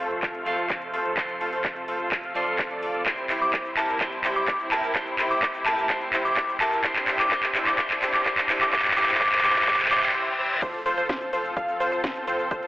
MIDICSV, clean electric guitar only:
0, 0, Header, 1, 2, 480
1, 0, Start_track
1, 0, Key_signature, -1, "major"
1, 0, Tempo, 472441
1, 1191, Time_signature, 4, 2, 24, 8
1, 12875, End_track
2, 0, Start_track
2, 0, Title_t, "Clean electric guitar"
2, 0, Program_c, 0, 27
2, 0, Note_on_c, 0, 53, 93
2, 0, Note_on_c, 0, 60, 87
2, 0, Note_on_c, 0, 65, 85
2, 0, Note_on_c, 0, 69, 85
2, 0, Note_on_c, 0, 72, 106
2, 436, Note_off_c, 0, 53, 0
2, 439, Note_off_c, 0, 60, 0
2, 442, Note_off_c, 0, 65, 0
2, 445, Note_off_c, 0, 69, 0
2, 448, Note_off_c, 0, 72, 0
2, 458, Note_on_c, 0, 53, 85
2, 465, Note_on_c, 0, 60, 82
2, 471, Note_on_c, 0, 65, 77
2, 477, Note_on_c, 0, 69, 79
2, 483, Note_on_c, 0, 77, 96
2, 1156, Note_off_c, 0, 53, 0
2, 1159, Note_off_c, 0, 60, 0
2, 1162, Note_off_c, 0, 65, 0
2, 1165, Note_off_c, 0, 69, 0
2, 1168, Note_off_c, 0, 77, 0
2, 1178, Note_on_c, 0, 53, 95
2, 1184, Note_on_c, 0, 60, 85
2, 1191, Note_on_c, 0, 65, 84
2, 1197, Note_on_c, 0, 69, 89
2, 1203, Note_on_c, 0, 72, 99
2, 2356, Note_off_c, 0, 53, 0
2, 2359, Note_off_c, 0, 60, 0
2, 2362, Note_off_c, 0, 65, 0
2, 2365, Note_off_c, 0, 69, 0
2, 2368, Note_off_c, 0, 72, 0
2, 2379, Note_on_c, 0, 53, 97
2, 2385, Note_on_c, 0, 60, 89
2, 2391, Note_on_c, 0, 65, 90
2, 2397, Note_on_c, 0, 69, 91
2, 2403, Note_on_c, 0, 72, 106
2, 3076, Note_off_c, 0, 53, 0
2, 3079, Note_off_c, 0, 60, 0
2, 3082, Note_off_c, 0, 65, 0
2, 3085, Note_off_c, 0, 69, 0
2, 3088, Note_off_c, 0, 72, 0
2, 3099, Note_on_c, 0, 48, 88
2, 3105, Note_on_c, 0, 60, 80
2, 3111, Note_on_c, 0, 64, 78
2, 3117, Note_on_c, 0, 67, 79
2, 3123, Note_on_c, 0, 72, 93
2, 4046, Note_off_c, 0, 48, 0
2, 4049, Note_off_c, 0, 60, 0
2, 4052, Note_off_c, 0, 64, 0
2, 4055, Note_off_c, 0, 67, 0
2, 4058, Note_off_c, 0, 72, 0
2, 4059, Note_on_c, 0, 48, 92
2, 4065, Note_on_c, 0, 60, 84
2, 4071, Note_on_c, 0, 64, 81
2, 4077, Note_on_c, 0, 67, 81
2, 4083, Note_on_c, 0, 72, 96
2, 5006, Note_off_c, 0, 48, 0
2, 5009, Note_off_c, 0, 60, 0
2, 5012, Note_off_c, 0, 64, 0
2, 5015, Note_off_c, 0, 67, 0
2, 5018, Note_off_c, 0, 72, 0
2, 5019, Note_on_c, 0, 48, 87
2, 5025, Note_on_c, 0, 60, 82
2, 5031, Note_on_c, 0, 64, 83
2, 5037, Note_on_c, 0, 67, 83
2, 5043, Note_on_c, 0, 72, 97
2, 5966, Note_off_c, 0, 48, 0
2, 5969, Note_off_c, 0, 60, 0
2, 5972, Note_off_c, 0, 64, 0
2, 5975, Note_off_c, 0, 67, 0
2, 5978, Note_off_c, 0, 72, 0
2, 5979, Note_on_c, 0, 48, 98
2, 5985, Note_on_c, 0, 60, 85
2, 5991, Note_on_c, 0, 64, 86
2, 5997, Note_on_c, 0, 67, 90
2, 6003, Note_on_c, 0, 72, 100
2, 6926, Note_off_c, 0, 48, 0
2, 6929, Note_off_c, 0, 60, 0
2, 6932, Note_off_c, 0, 64, 0
2, 6935, Note_off_c, 0, 67, 0
2, 6938, Note_off_c, 0, 72, 0
2, 6939, Note_on_c, 0, 48, 96
2, 6945, Note_on_c, 0, 60, 84
2, 6951, Note_on_c, 0, 64, 87
2, 6957, Note_on_c, 0, 67, 87
2, 6963, Note_on_c, 0, 72, 107
2, 7406, Note_off_c, 0, 48, 0
2, 7409, Note_off_c, 0, 60, 0
2, 7412, Note_off_c, 0, 64, 0
2, 7415, Note_off_c, 0, 67, 0
2, 7418, Note_off_c, 0, 72, 0
2, 7419, Note_on_c, 0, 48, 97
2, 7425, Note_on_c, 0, 60, 91
2, 7431, Note_on_c, 0, 64, 91
2, 7438, Note_on_c, 0, 67, 87
2, 7444, Note_on_c, 0, 72, 109
2, 7886, Note_off_c, 0, 48, 0
2, 7889, Note_off_c, 0, 60, 0
2, 7892, Note_off_c, 0, 64, 0
2, 7895, Note_off_c, 0, 67, 0
2, 7898, Note_off_c, 0, 72, 0
2, 7899, Note_on_c, 0, 48, 99
2, 7905, Note_on_c, 0, 60, 91
2, 7911, Note_on_c, 0, 64, 90
2, 7917, Note_on_c, 0, 67, 88
2, 7923, Note_on_c, 0, 72, 110
2, 8366, Note_off_c, 0, 48, 0
2, 8369, Note_off_c, 0, 60, 0
2, 8372, Note_off_c, 0, 64, 0
2, 8375, Note_off_c, 0, 67, 0
2, 8378, Note_off_c, 0, 72, 0
2, 8379, Note_on_c, 0, 48, 96
2, 8385, Note_on_c, 0, 60, 89
2, 8391, Note_on_c, 0, 64, 90
2, 8397, Note_on_c, 0, 67, 85
2, 8403, Note_on_c, 0, 72, 105
2, 8846, Note_off_c, 0, 48, 0
2, 8849, Note_off_c, 0, 60, 0
2, 8852, Note_off_c, 0, 64, 0
2, 8855, Note_off_c, 0, 67, 0
2, 8858, Note_off_c, 0, 72, 0
2, 8859, Note_on_c, 0, 48, 98
2, 8865, Note_on_c, 0, 60, 91
2, 8871, Note_on_c, 0, 64, 93
2, 8877, Note_on_c, 0, 67, 86
2, 8883, Note_on_c, 0, 72, 114
2, 9086, Note_off_c, 0, 48, 0
2, 9089, Note_off_c, 0, 60, 0
2, 9092, Note_off_c, 0, 64, 0
2, 9095, Note_off_c, 0, 67, 0
2, 9098, Note_off_c, 0, 72, 0
2, 9098, Note_on_c, 0, 48, 101
2, 9105, Note_on_c, 0, 60, 87
2, 9111, Note_on_c, 0, 64, 94
2, 9117, Note_on_c, 0, 67, 88
2, 9123, Note_on_c, 0, 72, 111
2, 9325, Note_off_c, 0, 48, 0
2, 9329, Note_off_c, 0, 60, 0
2, 9332, Note_off_c, 0, 64, 0
2, 9335, Note_off_c, 0, 67, 0
2, 9338, Note_off_c, 0, 72, 0
2, 9338, Note_on_c, 0, 48, 108
2, 9344, Note_on_c, 0, 60, 95
2, 9351, Note_on_c, 0, 64, 94
2, 9357, Note_on_c, 0, 67, 97
2, 9363, Note_on_c, 0, 72, 116
2, 9565, Note_off_c, 0, 48, 0
2, 9568, Note_off_c, 0, 60, 0
2, 9572, Note_off_c, 0, 64, 0
2, 9575, Note_off_c, 0, 67, 0
2, 9578, Note_off_c, 0, 72, 0
2, 9579, Note_on_c, 0, 48, 104
2, 9585, Note_on_c, 0, 60, 94
2, 9591, Note_on_c, 0, 64, 94
2, 9597, Note_on_c, 0, 67, 96
2, 9603, Note_on_c, 0, 72, 112
2, 9806, Note_off_c, 0, 48, 0
2, 9809, Note_off_c, 0, 60, 0
2, 9812, Note_off_c, 0, 64, 0
2, 9815, Note_off_c, 0, 67, 0
2, 9818, Note_off_c, 0, 72, 0
2, 9818, Note_on_c, 0, 48, 104
2, 9825, Note_on_c, 0, 60, 90
2, 9831, Note_on_c, 0, 64, 93
2, 9837, Note_on_c, 0, 67, 91
2, 9843, Note_on_c, 0, 72, 108
2, 10045, Note_off_c, 0, 48, 0
2, 10049, Note_off_c, 0, 60, 0
2, 10052, Note_off_c, 0, 64, 0
2, 10055, Note_off_c, 0, 67, 0
2, 10058, Note_off_c, 0, 72, 0
2, 10059, Note_on_c, 0, 48, 104
2, 10065, Note_on_c, 0, 60, 94
2, 10071, Note_on_c, 0, 64, 96
2, 10077, Note_on_c, 0, 67, 94
2, 10083, Note_on_c, 0, 72, 113
2, 10285, Note_off_c, 0, 48, 0
2, 10289, Note_off_c, 0, 60, 0
2, 10292, Note_off_c, 0, 64, 0
2, 10295, Note_off_c, 0, 67, 0
2, 10298, Note_off_c, 0, 72, 0
2, 12875, End_track
0, 0, End_of_file